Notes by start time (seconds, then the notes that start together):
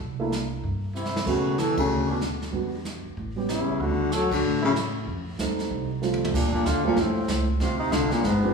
0.00 C2, brush sweep
0.20 A3 A#3 D4 E4
0.32 snare, hi-hat pedal
0.63 G2, brush sweep, kick
0.95 C3 E4, hi-hat pedal
1.06 snare
1.16 snare
1.26 B1 C#3 A3 B3 C#4 F#4, brush sweep, kick, crash
1.58 E3 A4, snare, hi-hat pedal
1.77 F#2 C#3 A3 C#4 D4 F#4 A4, kick, ride
1.89 D2, brush sweep
2.09 B2 D4
2.21 snare, hi-hat pedal
2.42 snare
2.52 E2 G3 B3 D4 F#4, brush sweep, kick
2.85 snare, hi-hat pedal
3.05 muted upright bass stroke
3.17 A1, brush sweep, kick
3.36 G3 B3 C#4 G4
3.49 C#3 E4, snare, hi-hat pedal
3.67 muted upright bass stroke
3.80 D2 D3 F#4, brush sweep, kick
4.12 F#3 A4, snare, hi-hat pedal
4.30 D3 F#4, kick, ride
4.43 A2, brush sweep
4.61 F#3 A3 C#4 E4
4.65 C#3
4.76 snare, hi-hat pedal
5.07 F2, brush sweep, kick
5.39 D#2 G3 A3 C4 D#4, snare, hi-hat pedal
5.59 snare
5.70 C2, brush sweep, kick
6.02 G3 A3 C4 F4, snare, hi-hat pedal
6.13 high tom
6.25 high tom
6.33 D2 A#2 D4, brush sweep, kick, snare, crash
6.51 A#2 D4, kick
6.65 D#2 D3 F4, snare, hi-hat pedal
6.84 A#2 G3 A3 C4 D4 F4
6.96 F2 A2 C4, brush sweep, kick, snare
7.16 muted upright bass stroke
7.28 C#2, kick, snare, hi-hat pedal
7.60 D2 C3 F4, brush sweep, kick, snare
7.79 C3 D#4
7.91 C2 D3 F4, kick, snare, hi-hat pedal
8.10 A#2 D4, muted upright bass stroke, snare
8.22 G1 G#2 B3, brush sweep, kick, snare
8.43 F3 G#3 B3 D4 G4